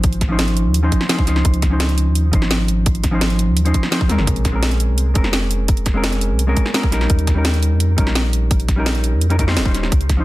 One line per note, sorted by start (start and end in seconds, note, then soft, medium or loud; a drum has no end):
0.00 0.67 G#1 medium
0.00 0.27 F3 medium
0.00 0.28 C#4 medium
0.00 0.28 D#4 medium
0.00 0.29 C5 medium
0.00 kick loud
0.00 closed hi-hat loud
0.13 closed hi-hat soft
0.21 kick medium
0.21 snare soft
0.21 closed hi-hat medium
0.29 0.80 F3 loud
0.29 0.81 C#4 medium
0.29 0.82 D#4 medium
0.29 0.82 C5 loud
0.39 snare loud
0.39 closed hi-hat loud
0.48 closed hi-hat soft
0.57 closed hi-hat medium
0.65 0.90 D#2 medium
0.74 closed hi-hat medium
0.83 1.07 F3 medium
0.83 1.08 C#4 medium
0.83 1.08 D#4 medium
0.83 1.08 C5 medium
0.92 kick medium
0.92 closed hi-hat medium
1.01 snare medium
1.09 1.24 F3 medium
1.09 1.25 C#4 medium
1.09 1.25 D#4 medium
1.09 1.26 C5 loud
1.09 snare loud
1.09 closed hi-hat medium
1.19 kick loud
1.26 1.43 C#2 medium
1.26 1.68 F3 medium
1.26 1.69 C#4 medium
1.26 1.70 D#4 medium
1.26 1.70 C5 medium
1.26 snare soft
1.26 closed hi-hat medium
1.36 snare soft
1.45 2.08 C#2 loud
1.45 kick loud
1.45 closed hi-hat loud
1.54 closed hi-hat soft
1.62 kick medium
1.62 snare soft
1.62 closed hi-hat medium
1.70 2.30 F3 medium
1.70 2.31 C#4 medium
1.70 2.31 D#4 medium
1.70 2.32 C5 medium
1.80 snare loud
1.80 closed hi-hat loud
1.89 closed hi-hat soft
1.98 closed hi-hat medium
2.07 2.32 D#2 medium
2.15 closed hi-hat loud
2.31 3.49 G#1 medium
2.31 3.10 F3 medium
2.31 3.10 C#4 medium
2.31 3.11 D#4 medium
2.31 3.11 C5 medium
2.31 kick loud
2.31 closed hi-hat medium
2.42 snare medium
2.51 snare loud
2.51 closed hi-hat loud
2.68 closed hi-hat medium
2.86 kick loud
2.86 closed hi-hat loud
2.95 closed hi-hat soft
3.04 kick medium
3.04 snare soft
3.04 closed hi-hat medium
3.11 3.63 F3 medium
3.11 3.63 C#4 medium
3.11 3.64 D#4 medium
3.11 3.64 C5 loud
3.21 snare loud
3.21 closed hi-hat loud
3.30 closed hi-hat soft
3.39 closed hi-hat medium
3.48 3.73 D#2 medium
3.57 closed hi-hat loud
3.65 3.90 F3 medium
3.65 3.90 C#4 medium
3.65 3.90 D#4 medium
3.65 3.90 C5 medium
3.65 closed hi-hat soft
3.74 kick medium
3.74 closed hi-hat medium
3.83 snare medium
3.91 4.07 F3 medium
3.91 4.07 C#4 medium
3.91 4.08 D#4 medium
3.91 4.08 C5 loud
3.91 snare loud
3.91 closed hi-hat loud
4.01 kick loud
4.08 4.18 D#2 medium
4.08 4.51 G#3 medium
4.08 4.51 C4 medium
4.08 4.52 C#4 medium
4.08 4.52 A#4 medium
4.08 snare soft
4.08 closed hi-hat medium
4.08 high tom medium
4.18 4.27 G#1 medium
4.18 snare soft
4.18 mid tom medium
4.27 4.90 A#1 loud
4.27 kick loud
4.27 closed hi-hat loud
4.36 closed hi-hat soft
4.45 kick medium
4.45 snare soft
4.45 closed hi-hat medium
4.52 5.12 G#3 medium
4.52 5.13 C4 medium
4.52 5.14 C#4 medium
4.52 5.14 A#4 medium
4.63 snare loud
4.63 closed hi-hat loud
4.71 closed hi-hat soft
4.80 closed hi-hat medium
4.89 5.14 C2 medium
4.98 closed hi-hat loud
5.14 6.32 F1 medium
5.14 5.92 G#3 medium
5.14 5.93 C4 medium
5.14 5.93 C#4 medium
5.14 5.94 A#4 medium
5.14 kick loud
5.14 closed hi-hat medium
5.24 snare medium
5.33 snare loud
5.33 closed hi-hat loud
5.51 closed hi-hat medium
5.68 kick loud
5.68 closed hi-hat loud
5.77 closed hi-hat soft
5.86 kick medium
5.86 snare soft
5.86 closed hi-hat medium
5.94 6.45 G#3 medium
5.94 6.46 C4 medium
5.94 6.46 C#4 medium
5.94 6.47 A#4 loud
6.04 snare loud
6.04 closed hi-hat loud
6.13 closed hi-hat soft
6.21 closed hi-hat medium
6.30 6.55 C2 medium
6.39 closed hi-hat medium
6.47 6.72 G#3 medium
6.47 6.72 C4 medium
6.47 6.72 C#4 medium
6.47 6.73 A#4 medium
6.57 kick medium
6.57 closed hi-hat medium
6.66 snare medium
6.74 6.90 G#3 loud
6.74 6.90 C4 medium
6.74 6.90 C#4 medium
6.74 6.90 A#4 loud
6.74 snare loud
6.74 closed hi-hat loud
6.83 kick loud
6.90 7.08 A#1 medium
6.90 7.33 G3 medium
6.90 7.34 C#4 medium
6.90 7.34 D#4 medium
6.90 7.35 A#4 medium
6.90 snare soft
6.90 closed hi-hat medium
7.01 snare soft
7.10 7.73 D#2 loud
7.10 kick loud
7.10 closed hi-hat medium
7.19 closed hi-hat soft
7.27 kick medium
7.27 snare soft
7.27 closed hi-hat medium
7.35 7.95 G3 medium
7.35 7.96 C#4 medium
7.35 7.96 D#4 medium
7.35 7.97 A#4 medium
7.45 snare loud
7.45 closed hi-hat medium
7.54 closed hi-hat soft
7.63 closed hi-hat medium
7.71 7.96 F2 medium
7.80 closed hi-hat medium
7.97 9.14 A#1 medium
7.97 8.75 G3 medium
7.97 8.75 C#4 medium
7.97 8.76 D#4 medium
7.97 8.76 A#4 medium
7.97 kick loud
7.97 closed hi-hat medium
8.07 snare medium
8.15 snare loud
8.15 closed hi-hat medium
8.33 closed hi-hat medium
8.51 kick loud
8.51 closed hi-hat medium
8.60 closed hi-hat soft
8.68 kick medium
8.68 snare soft
8.68 closed hi-hat medium
8.76 9.28 G3 medium
8.76 9.28 C#4 medium
8.76 9.29 D#4 medium
8.76 9.29 A#4 loud
8.86 snare loud
8.86 closed hi-hat loud
8.95 closed hi-hat soft
9.04 closed hi-hat medium
9.13 9.58 F2 medium
9.21 closed hi-hat medium
9.30 9.37 G3 medium
9.30 9.37 C#4 medium
9.30 9.38 D#4 medium
9.30 9.38 A#4 medium
9.30 closed hi-hat soft
9.38 9.45 G3 medium
9.38 9.46 C#4 medium
9.38 9.46 D#4 medium
9.38 9.46 A#4 loud
9.38 kick medium
9.38 closed hi-hat medium
9.47 9.63 G3 medium
9.47 9.63 C#4 medium
9.47 9.64 D#4 medium
9.47 9.64 C5 loud
9.47 snare soft
9.47 snare medium
9.57 9.91 D#1 medium
9.57 snare loud
9.57 closed hi-hat medium
9.65 9.91 G3 medium
9.65 9.91 C#4 medium
9.65 9.91 D#4 medium
9.65 9.91 C5 loud
9.65 kick loud
9.75 snare soft
9.75 closed hi-hat medium
9.83 snare soft
9.92 10.24 C#2 loud
9.92 kick loud
9.92 closed hi-hat medium
10.01 closed hi-hat soft
10.09 kick medium
10.09 snare soft
10.09 closed hi-hat medium
10.17 10.24 F3 medium
10.17 10.24 C#4 medium
10.17 10.24 D#4 medium
10.17 10.24 C5 medium